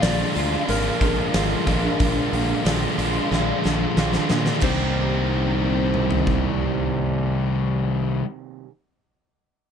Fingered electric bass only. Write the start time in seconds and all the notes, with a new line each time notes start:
0.03 A#1
0.36 D2
0.69 G#1
1.01 A#1
1.34 G#1
1.68 A#1
2.00 A#1
2.33 A#1
2.65 A#1
2.98 A#1
3.31 A#1
3.65 A#1
3.97 A#1
4.30 A#2
4.62 C2